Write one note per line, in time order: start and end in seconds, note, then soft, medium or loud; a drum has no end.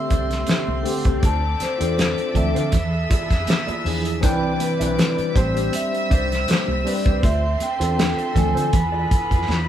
0.00 0.55 D3 medium
0.00 1.20 G3 medium
0.00 0.56 A3 medium
0.00 2.69 A3 medium
0.00 0.56 C4 medium
0.00 2.69 C4 medium
0.00 0.57 G4 medium
0.00 1.20 C5 medium
0.00 0.83 E5 medium
0.00 1.20 C6 medium
0.10 0.43 C2 medium
0.10 0.32 D4 medium
0.10 0.31 G4 medium
0.10 0.30 D5 medium
0.10 kick medium
0.10 closed hi-hat medium
0.31 muted clean electric guitar stroke soft
0.31 snare soft
0.31 closed hi-hat soft
0.47 0.69 D4 medium
0.47 0.70 G4 medium
0.47 0.70 C5 medium
0.47 muted fingered electric bass stroke soft
0.47 snare loud
0.47 closed hi-hat medium
0.47 high conga medium
0.68 0.83 C2 medium
0.68 high conga medium
0.83 1.22 D3 medium
0.83 1.22 A3 medium
0.83 1.23 C4 medium
0.83 1.23 G4 medium
0.83 muted clean electric guitar stroke soft
0.83 open hi-hat medium
1.05 1.21 C2 medium
1.05 1.21 D4 soft
1.05 1.21 G4 soft
1.05 1.20 C5 medium
1.05 kick medium
1.05 closed hi-hat medium
1.23 1.56 D2 medium
1.23 2.72 D3 medium
1.23 1.44 D4 medium
1.23 1.43 F4 medium
1.23 4.20 A4 medium
1.23 1.42 C5 medium
1.23 2.70 D5 medium
1.23 2.72 E5 medium
1.23 1.63 A5 loud
1.23 2.70 D6 medium
1.23 kick loud
1.23 closed hi-hat medium
1.23 muted conga soft
1.43 muted clean electric guitar stroke soft
1.60 2.39 C5 medium
1.60 muted clean electric guitar stroke soft
1.60 muted fingered electric bass stroke soft
1.60 snare soft
1.60 closed hi-hat medium
1.60 muted conga soft
1.78 2.13 E2 medium
1.78 2.23 C4 medium
1.78 2.24 D4 medium
1.78 2.23 F4 medium
1.78 1.96 F4 soft
1.78 2.24 A4 medium
1.78 1.95 C5 medium
1.78 closed hi-hat medium
1.82 1.96 D4 soft
1.98 snare loud
1.98 closed hi-hat medium
1.98 high conga medium
2.18 muted clean electric guitar stroke soft
2.18 closed hi-hat soft
2.34 2.53 D2 medium
2.34 2.72 F3 medium
2.34 2.73 C4 medium
2.34 2.73 D4 medium
2.34 2.74 A4 medium
2.34 3.82 E5 medium
2.34 kick medium
2.34 closed hi-hat medium
2.34 low conga medium
2.55 2.71 D3 medium
2.55 2.75 D4 medium
2.55 2.75 F4 medium
2.55 2.74 C5 medium
2.55 closed hi-hat soft
2.72 3.06 E2 medium
2.72 4.21 E3 medium
2.72 4.21 B3 medium
2.72 4.21 D4 medium
2.72 4.21 G#4 medium
2.72 4.20 E5 medium
2.72 4.20 E6 medium
2.72 kick medium
2.72 closed hi-hat medium
2.72 muted conga soft
2.72 low conga medium
2.93 muted clean electric guitar stroke soft
3.10 3.32 F4 medium
3.10 3.30 G#4 medium
3.10 3.29 D5 medium
3.10 kick medium
3.10 closed hi-hat medium
3.30 3.46 F2 medium
3.30 muted clean electric guitar stroke medium
3.30 kick medium
3.30 snare soft
3.30 closed hi-hat soft
3.47 muted clean electric guitar stroke soft
3.47 snare loud
3.47 closed hi-hat medium
3.47 high conga medium
3.67 3.84 F4 medium
3.67 3.84 G#4 medium
3.67 3.85 D5 medium
3.67 muted fingered electric bass stroke soft
3.67 closed hi-hat soft
3.67 high conga medium
3.84 4.23 E2 medium
3.84 4.15 F3 medium
3.84 4.15 D4 medium
3.84 4.15 E4 medium
3.84 4.16 G#4 medium
3.84 muted clean electric guitar stroke soft
3.84 open hi-hat medium
4.05 muted clean electric guitar stroke soft
4.05 closed hi-hat medium
4.21 4.56 C2 medium
4.21 5.34 C3 medium
4.21 4.66 E3 medium
4.21 7.20 G3 medium
4.21 4.67 C4 medium
4.21 5.34 D4 medium
4.21 4.67 D4 medium
4.21 4.44 E4 medium
4.21 5.34 E4 medium
4.21 5.34 B4 medium
4.21 4.42 B4 medium
4.21 4.67 B4 medium
4.21 5.33 D5 medium
4.21 4.41 D5 medium
4.21 4.62 G5 medium
4.21 5.33 D6 medium
4.21 5.69 G6 soft
4.21 kick loud
4.21 closed hi-hat medium
4.42 muted clean electric guitar stroke soft
4.60 5.32 B4 medium
4.60 muted clean electric guitar stroke soft
4.60 closed hi-hat medium
4.60 muted conga soft
4.79 4.96 B1 medium
4.79 5.23 E3 medium
4.79 5.24 C4 medium
4.79 5.24 D4 medium
4.79 4.95 E4 soft
4.79 4.95 B4 soft
4.79 5.25 B4 medium
4.79 4.95 E5 medium
4.79 closed hi-hat medium
4.97 muted clean electric guitar stroke soft
4.97 snare loud
4.97 closed hi-hat medium
4.97 high conga medium
5.17 muted clean electric guitar stroke soft
5.17 muted fingered electric bass stroke soft
5.17 closed hi-hat soft
5.34 5.68 A1 medium
5.34 6.56 G3 medium
5.34 8.70 A3 medium
5.34 8.70 C4 medium
5.34 6.56 C4 medium
5.34 6.57 D4 medium
5.34 6.57 C5 medium
5.34 5.54 C5 medium
5.34 7.19 E5 medium
5.34 7.19 E6 medium
5.34 kick loud
5.34 closed hi-hat medium
5.55 5.72 D4 medium
5.55 5.72 G4 medium
5.55 5.73 C5 medium
5.55 closed hi-hat soft
5.73 6.13 E5 medium
5.73 muted clean electric guitar stroke soft
5.73 closed hi-hat medium
5.73 muted conga soft
5.93 muted clean electric guitar stroke soft
5.93 closed hi-hat soft
6.10 6.44 C2 medium
6.10 6.32 D4 medium
6.10 6.31 G4 medium
6.10 6.89 C5 medium
6.10 6.30 D5 medium
6.10 kick medium
6.10 closed hi-hat medium
6.31 muted clean electric guitar stroke soft
6.31 snare soft
6.31 closed hi-hat soft
6.48 6.69 D4 medium
6.48 6.70 G4 medium
6.48 6.70 C5 medium
6.48 snare loud
6.48 closed hi-hat medium
6.48 high conga medium
6.68 6.83 C2 medium
6.68 high conga medium
6.84 7.23 G3 medium
6.84 7.23 C4 medium
6.84 7.23 D4 medium
6.84 7.24 B4 medium
6.84 7.25 D5 medium
6.84 muted clean electric guitar stroke soft
6.84 open hi-hat medium
7.05 7.21 C2 medium
7.05 7.21 D4 soft
7.05 7.21 G4 medium
7.05 7.20 C5 medium
7.05 kick loud
7.05 closed hi-hat medium
7.22 7.56 D2 loud
7.22 8.72 D3 medium
7.22 7.44 F4 medium
7.22 9.68 A4 medium
7.22 7.43 A4 medium
7.22 8.71 C5 medium
7.22 7.41 C5 loud
7.22 8.72 E5 medium
7.22 7.63 E5 medium
7.22 8.70 C6 medium
7.22 kick loud
7.22 closed hi-hat medium
7.22 muted conga soft
7.43 muted clean electric guitar stroke soft
7.60 8.39 G5 loud
7.60 muted clean electric guitar stroke soft
7.60 muted fingered electric bass stroke soft
7.60 closed hi-hat medium
7.60 muted conga soft
7.80 8.13 E2 medium
7.80 8.24 C4 medium
7.80 8.24 D4 medium
7.80 8.23 F4 medium
7.80 7.96 F4 soft
7.80 7.95 A4 medium
7.80 8.25 A4 medium
7.80 7.95 C5 medium
7.80 closed hi-hat medium
7.98 muted clean electric guitar stroke soft
7.98 snare loud
7.98 closed hi-hat medium
7.98 high conga medium
8.18 muted clean electric guitar stroke soft
8.18 closed hi-hat soft
8.35 8.53 D2 medium
8.35 8.73 F3 medium
8.35 8.73 C4 medium
8.35 8.74 D4 medium
8.35 8.74 A4 medium
8.35 9.45 G#5 medium
8.35 kick medium
8.35 closed hi-hat medium
8.35 low conga medium
8.55 8.71 D3 medium
8.55 8.71 F4 medium
8.55 8.73 A4 medium
8.55 8.73 C5 medium
8.55 closed hi-hat medium
8.73 9.06 E2 loud
8.73 9.68 E3 medium
8.73 9.68 B3 medium
8.73 9.68 D4 medium
8.73 9.68 F4 medium
8.73 9.68 B4 medium
8.73 9.68 B5 medium
8.73 muted clean electric guitar stroke soft
8.73 kick medium
8.73 closed hi-hat medium
8.73 muted conga soft
8.73 low conga medium
8.92 9.09 F4 medium
8.92 9.10 G#4 medium
8.92 9.10 D5 medium
9.10 muted clean electric guitar stroke soft
9.10 muted fingered electric bass stroke soft
9.10 kick medium
9.10 closed hi-hat medium
9.31 9.46 F2 medium
9.31 muted clean electric guitar stroke soft
9.31 kick medium
9.31 closed hi-hat soft
9.48 9.66 E2 medium
9.48 muted clean electric guitar stroke soft
9.48 snare medium
9.48 high conga medium